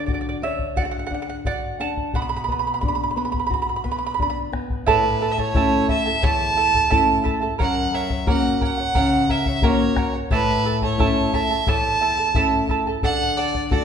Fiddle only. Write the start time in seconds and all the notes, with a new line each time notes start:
4.88 B4
5.32 E5
5.39 C#5
5.90 E5
6.24 A5
7.61 F#5
7.95 E5
8.29 F#5
8.63 F#5
9.31 E5
9.64 C#5
10.33 B4
10.84 C#5
11.34 E5
11.69 A5
13.04 F#5
13.37 D5
13.71 D5